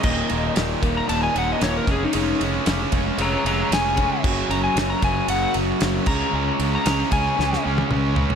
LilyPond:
<<
  \new Staff \with { instrumentName = "Electric slide guitar" } { \time 4/4 \key des \mixolydian \tempo 4 = 115 ees''4 r8. bes''16 a''16 aes''16 ges''16 ees''16 des''16 bes'16 aes'16 ees'16 | ees'8 r4. <des'' bes''>8 <des'' bes''>8 aes''4 | r8 bes''16 aes''16 r16 bes''16 aes''8 ges''8 r4 bes''8~ | bes''8 r16 bes''8. aes''4 r4. | }
  \new Staff \with { instrumentName = "Distorted electric guitar" } { \clef bass \time 4/4 \key des \mixolydian <ees, bes, ees>8 <ees, bes, ees>8 <ees, bes, ees>8 <ees, bes, ees>8 <ees, bes, ees>8 <ees, bes, ees>8 <ees, bes, ees>8 <des aes des'>8 | <des aes des'>8 <des aes des'>8 <des aes des'>8 <des aes des'>8 <des aes des'>8 <des aes des'>8 <des aes des'>8 <des aes des'>8 | <ges, des ges>8 <ges, des ges>8 <ges, des ges>8 <ges, des ges>8 <ges, des ges>8 <ges, des ges>8 <ges, des ges>8 <des aes des'>8 | <des aes des'>8 <des aes des'>8 <des aes des'>8 <des aes des'>8 <des aes des'>8 <des aes des'>8 <des aes des'>8 <des aes des'>8 | }
  \new Staff \with { instrumentName = "Distorted electric guitar" } { \clef bass \time 4/4 \key des \mixolydian <ees, bes, ees>8 <ees, bes, ees>8 <ees, bes, ees>8 <ees, bes, ees>8 <ees, bes, ees>8 <ees, bes, ees>8 <ees, bes, ees>8 <des aes des'>8 | <des aes des'>8 <des aes des'>8 <des aes des'>8 <des aes des'>8 <des aes des'>8 <des aes des'>8 <des aes des'>8 <des aes des'>8 | <ges, des ges>8 <ges, des ges>8 <ges, des ges>8 <ges, des ges>8 <ges, des ges>8 <ges, des ges>8 <ges, des ges>8 <des aes des'>8 | <des aes des'>8 <des aes des'>8 <des aes des'>8 <des aes des'>8 <des aes des'>8 <des aes des'>8 <des aes des'>8 <des aes des'>8 | }
  \new Staff \with { instrumentName = "Fingered electric bass" } { \clef bass \time 4/4 \key des \mixolydian ees,,8 ees,,8 ees,,8 ees,,8 ees,,8 ees,,8 ees,,8 f,,8 | f,,8 f,,8 f,,8 f,,8 f,,8 f,,8 f,,4 | ges,,8 ges,,8 ges,,8 ges,,8 ges,,8 ges,,8 ges,,8 des,8 | des,8 des,8 des,8 des,8 des,8 des,8 des,4 | }
  \new DrumStaff \with { instrumentName = "Drums" } \drummode { \time 4/4 <cymc bd>8 cymr8 <cymr sn>8 <bd cymr>8 cymr8 cymr8 <cymr sn>8 <bd cymr>8 | cymr8 cymr8 <cymr sn>8 <bd cymr>8 cymr8 cymr8 <cymr sn>8 <bd cymr>8 | <cymc bd>8 cymr8 <cymr sn>8 <bd cymr>8 cymr8 cymr8 <cymr sn>8 <cymc bd>8 | r8 cymr8 <cymr sn>8 <bd cymr>8 sn16 sn8 tommh16 toml8 tomfh16 tomfh16 | }
>>